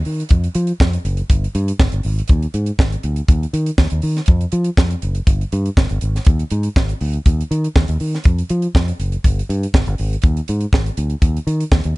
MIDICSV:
0, 0, Header, 1, 3, 480
1, 0, Start_track
1, 0, Tempo, 496278
1, 1255, Time_signature, 4, 2, 24, 8
1, 11583, End_track
2, 0, Start_track
2, 0, Title_t, "Fingered electric bass"
2, 0, Program_c, 0, 33
2, 58, Note_on_c, 0, 51, 90
2, 213, Note_off_c, 0, 51, 0
2, 297, Note_on_c, 0, 41, 109
2, 452, Note_off_c, 0, 41, 0
2, 533, Note_on_c, 0, 53, 108
2, 690, Note_off_c, 0, 53, 0
2, 778, Note_on_c, 0, 41, 89
2, 933, Note_off_c, 0, 41, 0
2, 1013, Note_on_c, 0, 30, 104
2, 1169, Note_off_c, 0, 30, 0
2, 1254, Note_on_c, 0, 31, 104
2, 1410, Note_off_c, 0, 31, 0
2, 1497, Note_on_c, 0, 43, 115
2, 1653, Note_off_c, 0, 43, 0
2, 1739, Note_on_c, 0, 31, 113
2, 1820, Note_off_c, 0, 31, 0
2, 1861, Note_on_c, 0, 31, 106
2, 1935, Note_off_c, 0, 31, 0
2, 1980, Note_on_c, 0, 32, 97
2, 2135, Note_off_c, 0, 32, 0
2, 2219, Note_on_c, 0, 39, 97
2, 2374, Note_off_c, 0, 39, 0
2, 2457, Note_on_c, 0, 44, 94
2, 2613, Note_off_c, 0, 44, 0
2, 2698, Note_on_c, 0, 32, 98
2, 2854, Note_off_c, 0, 32, 0
2, 2939, Note_on_c, 0, 38, 92
2, 3094, Note_off_c, 0, 38, 0
2, 3177, Note_on_c, 0, 39, 99
2, 3333, Note_off_c, 0, 39, 0
2, 3418, Note_on_c, 0, 51, 101
2, 3573, Note_off_c, 0, 51, 0
2, 3658, Note_on_c, 0, 39, 101
2, 3740, Note_off_c, 0, 39, 0
2, 3788, Note_on_c, 0, 39, 95
2, 3860, Note_off_c, 0, 39, 0
2, 3899, Note_on_c, 0, 51, 94
2, 4055, Note_off_c, 0, 51, 0
2, 4142, Note_on_c, 0, 41, 105
2, 4297, Note_off_c, 0, 41, 0
2, 4378, Note_on_c, 0, 53, 109
2, 4534, Note_off_c, 0, 53, 0
2, 4620, Note_on_c, 0, 41, 93
2, 4775, Note_off_c, 0, 41, 0
2, 4864, Note_on_c, 0, 30, 91
2, 5018, Note_off_c, 0, 30, 0
2, 5096, Note_on_c, 0, 31, 100
2, 5252, Note_off_c, 0, 31, 0
2, 5345, Note_on_c, 0, 43, 107
2, 5499, Note_off_c, 0, 43, 0
2, 5581, Note_on_c, 0, 31, 109
2, 5663, Note_off_c, 0, 31, 0
2, 5714, Note_on_c, 0, 31, 112
2, 5785, Note_off_c, 0, 31, 0
2, 5824, Note_on_c, 0, 32, 101
2, 5978, Note_off_c, 0, 32, 0
2, 6060, Note_on_c, 0, 39, 89
2, 6215, Note_off_c, 0, 39, 0
2, 6300, Note_on_c, 0, 44, 93
2, 6456, Note_off_c, 0, 44, 0
2, 6540, Note_on_c, 0, 32, 88
2, 6695, Note_off_c, 0, 32, 0
2, 6780, Note_on_c, 0, 38, 100
2, 6935, Note_off_c, 0, 38, 0
2, 7020, Note_on_c, 0, 39, 102
2, 7175, Note_off_c, 0, 39, 0
2, 7262, Note_on_c, 0, 51, 98
2, 7416, Note_off_c, 0, 51, 0
2, 7504, Note_on_c, 0, 39, 109
2, 7584, Note_off_c, 0, 39, 0
2, 7628, Note_on_c, 0, 39, 113
2, 7700, Note_off_c, 0, 39, 0
2, 7743, Note_on_c, 0, 51, 96
2, 7897, Note_off_c, 0, 51, 0
2, 7983, Note_on_c, 0, 41, 103
2, 8137, Note_off_c, 0, 41, 0
2, 8224, Note_on_c, 0, 53, 103
2, 8377, Note_off_c, 0, 53, 0
2, 8462, Note_on_c, 0, 41, 95
2, 8616, Note_off_c, 0, 41, 0
2, 8699, Note_on_c, 0, 30, 94
2, 8854, Note_off_c, 0, 30, 0
2, 8943, Note_on_c, 0, 31, 104
2, 9097, Note_off_c, 0, 31, 0
2, 9182, Note_on_c, 0, 43, 106
2, 9336, Note_off_c, 0, 43, 0
2, 9422, Note_on_c, 0, 31, 99
2, 9502, Note_off_c, 0, 31, 0
2, 9546, Note_on_c, 0, 31, 111
2, 9618, Note_off_c, 0, 31, 0
2, 9666, Note_on_c, 0, 32, 108
2, 9818, Note_off_c, 0, 32, 0
2, 9898, Note_on_c, 0, 39, 101
2, 10053, Note_off_c, 0, 39, 0
2, 10147, Note_on_c, 0, 44, 105
2, 10298, Note_off_c, 0, 44, 0
2, 10375, Note_on_c, 0, 32, 91
2, 10530, Note_off_c, 0, 32, 0
2, 10616, Note_on_c, 0, 38, 101
2, 10771, Note_off_c, 0, 38, 0
2, 10850, Note_on_c, 0, 39, 106
2, 11006, Note_off_c, 0, 39, 0
2, 11092, Note_on_c, 0, 51, 110
2, 11247, Note_off_c, 0, 51, 0
2, 11332, Note_on_c, 0, 39, 110
2, 11415, Note_off_c, 0, 39, 0
2, 11463, Note_on_c, 0, 39, 114
2, 11535, Note_off_c, 0, 39, 0
2, 11583, End_track
3, 0, Start_track
3, 0, Title_t, "Drums"
3, 48, Note_on_c, 9, 46, 65
3, 145, Note_off_c, 9, 46, 0
3, 193, Note_on_c, 9, 42, 50
3, 279, Note_off_c, 9, 42, 0
3, 279, Note_on_c, 9, 42, 77
3, 296, Note_on_c, 9, 36, 104
3, 376, Note_off_c, 9, 42, 0
3, 393, Note_off_c, 9, 36, 0
3, 422, Note_on_c, 9, 42, 44
3, 519, Note_off_c, 9, 42, 0
3, 528, Note_on_c, 9, 42, 81
3, 624, Note_off_c, 9, 42, 0
3, 648, Note_on_c, 9, 42, 55
3, 745, Note_off_c, 9, 42, 0
3, 774, Note_on_c, 9, 36, 120
3, 783, Note_on_c, 9, 38, 123
3, 871, Note_off_c, 9, 36, 0
3, 880, Note_off_c, 9, 38, 0
3, 902, Note_on_c, 9, 42, 53
3, 999, Note_off_c, 9, 42, 0
3, 1015, Note_on_c, 9, 42, 80
3, 1112, Note_off_c, 9, 42, 0
3, 1132, Note_on_c, 9, 42, 45
3, 1229, Note_off_c, 9, 42, 0
3, 1253, Note_on_c, 9, 42, 88
3, 1254, Note_on_c, 9, 36, 101
3, 1350, Note_off_c, 9, 42, 0
3, 1351, Note_off_c, 9, 36, 0
3, 1394, Note_on_c, 9, 42, 42
3, 1491, Note_off_c, 9, 42, 0
3, 1497, Note_on_c, 9, 42, 75
3, 1594, Note_off_c, 9, 42, 0
3, 1625, Note_on_c, 9, 42, 61
3, 1722, Note_off_c, 9, 42, 0
3, 1736, Note_on_c, 9, 36, 127
3, 1737, Note_on_c, 9, 38, 126
3, 1833, Note_off_c, 9, 36, 0
3, 1833, Note_off_c, 9, 38, 0
3, 1855, Note_on_c, 9, 42, 55
3, 1951, Note_off_c, 9, 42, 0
3, 1966, Note_on_c, 9, 46, 66
3, 2063, Note_off_c, 9, 46, 0
3, 2113, Note_on_c, 9, 42, 46
3, 2202, Note_off_c, 9, 42, 0
3, 2202, Note_on_c, 9, 42, 78
3, 2219, Note_on_c, 9, 36, 111
3, 2298, Note_off_c, 9, 42, 0
3, 2316, Note_off_c, 9, 36, 0
3, 2345, Note_on_c, 9, 42, 45
3, 2442, Note_off_c, 9, 42, 0
3, 2456, Note_on_c, 9, 42, 80
3, 2552, Note_off_c, 9, 42, 0
3, 2576, Note_on_c, 9, 42, 49
3, 2673, Note_off_c, 9, 42, 0
3, 2697, Note_on_c, 9, 36, 121
3, 2707, Note_on_c, 9, 38, 114
3, 2794, Note_off_c, 9, 36, 0
3, 2804, Note_off_c, 9, 38, 0
3, 2827, Note_on_c, 9, 42, 52
3, 2924, Note_off_c, 9, 42, 0
3, 2934, Note_on_c, 9, 42, 78
3, 3031, Note_off_c, 9, 42, 0
3, 3058, Note_on_c, 9, 42, 48
3, 3154, Note_off_c, 9, 42, 0
3, 3176, Note_on_c, 9, 42, 93
3, 3177, Note_on_c, 9, 36, 124
3, 3272, Note_off_c, 9, 42, 0
3, 3274, Note_off_c, 9, 36, 0
3, 3318, Note_on_c, 9, 42, 42
3, 3415, Note_off_c, 9, 42, 0
3, 3421, Note_on_c, 9, 42, 86
3, 3518, Note_off_c, 9, 42, 0
3, 3544, Note_on_c, 9, 42, 59
3, 3640, Note_off_c, 9, 42, 0
3, 3656, Note_on_c, 9, 36, 109
3, 3656, Note_on_c, 9, 38, 103
3, 3753, Note_off_c, 9, 36, 0
3, 3753, Note_off_c, 9, 38, 0
3, 3772, Note_on_c, 9, 42, 57
3, 3869, Note_off_c, 9, 42, 0
3, 3887, Note_on_c, 9, 46, 64
3, 3984, Note_off_c, 9, 46, 0
3, 4030, Note_on_c, 9, 42, 51
3, 4031, Note_on_c, 9, 38, 35
3, 4119, Note_off_c, 9, 42, 0
3, 4119, Note_on_c, 9, 42, 77
3, 4127, Note_off_c, 9, 38, 0
3, 4139, Note_on_c, 9, 36, 121
3, 4216, Note_off_c, 9, 42, 0
3, 4236, Note_off_c, 9, 36, 0
3, 4263, Note_on_c, 9, 42, 47
3, 4360, Note_off_c, 9, 42, 0
3, 4369, Note_on_c, 9, 42, 84
3, 4466, Note_off_c, 9, 42, 0
3, 4492, Note_on_c, 9, 42, 56
3, 4589, Note_off_c, 9, 42, 0
3, 4618, Note_on_c, 9, 36, 125
3, 4626, Note_on_c, 9, 38, 123
3, 4714, Note_off_c, 9, 36, 0
3, 4723, Note_off_c, 9, 38, 0
3, 4745, Note_on_c, 9, 42, 52
3, 4842, Note_off_c, 9, 42, 0
3, 4856, Note_on_c, 9, 42, 77
3, 4953, Note_off_c, 9, 42, 0
3, 4979, Note_on_c, 9, 42, 48
3, 5075, Note_off_c, 9, 42, 0
3, 5096, Note_on_c, 9, 42, 86
3, 5097, Note_on_c, 9, 36, 107
3, 5193, Note_off_c, 9, 42, 0
3, 5194, Note_off_c, 9, 36, 0
3, 5235, Note_on_c, 9, 42, 45
3, 5332, Note_off_c, 9, 42, 0
3, 5342, Note_on_c, 9, 42, 84
3, 5438, Note_off_c, 9, 42, 0
3, 5470, Note_on_c, 9, 42, 51
3, 5567, Note_off_c, 9, 42, 0
3, 5581, Note_on_c, 9, 36, 127
3, 5585, Note_on_c, 9, 38, 109
3, 5677, Note_off_c, 9, 36, 0
3, 5682, Note_off_c, 9, 38, 0
3, 5700, Note_on_c, 9, 42, 50
3, 5797, Note_off_c, 9, 42, 0
3, 5814, Note_on_c, 9, 42, 66
3, 5910, Note_off_c, 9, 42, 0
3, 5957, Note_on_c, 9, 38, 33
3, 5957, Note_on_c, 9, 42, 54
3, 6042, Note_off_c, 9, 42, 0
3, 6042, Note_on_c, 9, 42, 75
3, 6054, Note_off_c, 9, 38, 0
3, 6061, Note_on_c, 9, 36, 127
3, 6139, Note_off_c, 9, 42, 0
3, 6157, Note_off_c, 9, 36, 0
3, 6184, Note_on_c, 9, 42, 46
3, 6281, Note_off_c, 9, 42, 0
3, 6291, Note_on_c, 9, 42, 88
3, 6388, Note_off_c, 9, 42, 0
3, 6415, Note_on_c, 9, 42, 55
3, 6511, Note_off_c, 9, 42, 0
3, 6539, Note_on_c, 9, 36, 117
3, 6545, Note_on_c, 9, 38, 110
3, 6636, Note_off_c, 9, 36, 0
3, 6642, Note_off_c, 9, 38, 0
3, 6664, Note_on_c, 9, 42, 49
3, 6761, Note_off_c, 9, 42, 0
3, 6776, Note_on_c, 9, 46, 76
3, 6873, Note_off_c, 9, 46, 0
3, 6899, Note_on_c, 9, 42, 46
3, 6996, Note_off_c, 9, 42, 0
3, 7018, Note_on_c, 9, 42, 92
3, 7020, Note_on_c, 9, 36, 108
3, 7115, Note_off_c, 9, 42, 0
3, 7117, Note_off_c, 9, 36, 0
3, 7162, Note_on_c, 9, 42, 49
3, 7259, Note_off_c, 9, 42, 0
3, 7269, Note_on_c, 9, 42, 81
3, 7366, Note_off_c, 9, 42, 0
3, 7393, Note_on_c, 9, 42, 57
3, 7489, Note_off_c, 9, 42, 0
3, 7502, Note_on_c, 9, 36, 127
3, 7505, Note_on_c, 9, 38, 107
3, 7599, Note_off_c, 9, 36, 0
3, 7602, Note_off_c, 9, 38, 0
3, 7620, Note_on_c, 9, 42, 54
3, 7717, Note_off_c, 9, 42, 0
3, 7737, Note_on_c, 9, 46, 68
3, 7834, Note_off_c, 9, 46, 0
3, 7879, Note_on_c, 9, 38, 37
3, 7879, Note_on_c, 9, 42, 46
3, 7967, Note_off_c, 9, 42, 0
3, 7967, Note_on_c, 9, 42, 74
3, 7976, Note_off_c, 9, 38, 0
3, 7983, Note_on_c, 9, 36, 119
3, 8064, Note_off_c, 9, 42, 0
3, 8080, Note_off_c, 9, 36, 0
3, 8110, Note_on_c, 9, 42, 47
3, 8207, Note_off_c, 9, 42, 0
3, 8216, Note_on_c, 9, 42, 80
3, 8313, Note_off_c, 9, 42, 0
3, 8339, Note_on_c, 9, 42, 48
3, 8436, Note_off_c, 9, 42, 0
3, 8461, Note_on_c, 9, 36, 125
3, 8471, Note_on_c, 9, 38, 126
3, 8558, Note_off_c, 9, 36, 0
3, 8567, Note_off_c, 9, 38, 0
3, 8588, Note_on_c, 9, 42, 50
3, 8685, Note_off_c, 9, 42, 0
3, 8701, Note_on_c, 9, 42, 76
3, 8797, Note_off_c, 9, 42, 0
3, 8822, Note_on_c, 9, 42, 51
3, 8918, Note_off_c, 9, 42, 0
3, 8940, Note_on_c, 9, 36, 106
3, 8940, Note_on_c, 9, 42, 91
3, 9037, Note_off_c, 9, 36, 0
3, 9037, Note_off_c, 9, 42, 0
3, 9084, Note_on_c, 9, 42, 49
3, 9180, Note_off_c, 9, 42, 0
3, 9189, Note_on_c, 9, 42, 83
3, 9286, Note_off_c, 9, 42, 0
3, 9317, Note_on_c, 9, 42, 51
3, 9414, Note_off_c, 9, 42, 0
3, 9420, Note_on_c, 9, 36, 124
3, 9425, Note_on_c, 9, 38, 112
3, 9517, Note_off_c, 9, 36, 0
3, 9522, Note_off_c, 9, 38, 0
3, 9538, Note_on_c, 9, 42, 51
3, 9635, Note_off_c, 9, 42, 0
3, 9654, Note_on_c, 9, 46, 65
3, 9751, Note_off_c, 9, 46, 0
3, 9796, Note_on_c, 9, 42, 49
3, 9883, Note_off_c, 9, 42, 0
3, 9883, Note_on_c, 9, 42, 69
3, 9900, Note_on_c, 9, 36, 110
3, 9980, Note_off_c, 9, 42, 0
3, 9997, Note_off_c, 9, 36, 0
3, 10027, Note_on_c, 9, 42, 47
3, 10124, Note_off_c, 9, 42, 0
3, 10135, Note_on_c, 9, 42, 87
3, 10232, Note_off_c, 9, 42, 0
3, 10257, Note_on_c, 9, 42, 51
3, 10354, Note_off_c, 9, 42, 0
3, 10376, Note_on_c, 9, 36, 117
3, 10388, Note_on_c, 9, 38, 118
3, 10473, Note_off_c, 9, 36, 0
3, 10485, Note_off_c, 9, 38, 0
3, 10506, Note_on_c, 9, 42, 52
3, 10603, Note_off_c, 9, 42, 0
3, 10613, Note_on_c, 9, 42, 81
3, 10709, Note_off_c, 9, 42, 0
3, 10734, Note_on_c, 9, 42, 45
3, 10831, Note_off_c, 9, 42, 0
3, 10851, Note_on_c, 9, 42, 98
3, 10852, Note_on_c, 9, 36, 109
3, 10948, Note_off_c, 9, 42, 0
3, 10949, Note_off_c, 9, 36, 0
3, 10993, Note_on_c, 9, 42, 49
3, 11090, Note_off_c, 9, 42, 0
3, 11098, Note_on_c, 9, 42, 79
3, 11195, Note_off_c, 9, 42, 0
3, 11224, Note_on_c, 9, 42, 54
3, 11320, Note_off_c, 9, 42, 0
3, 11332, Note_on_c, 9, 36, 123
3, 11334, Note_on_c, 9, 38, 110
3, 11429, Note_off_c, 9, 36, 0
3, 11431, Note_off_c, 9, 38, 0
3, 11449, Note_on_c, 9, 42, 54
3, 11546, Note_off_c, 9, 42, 0
3, 11583, End_track
0, 0, End_of_file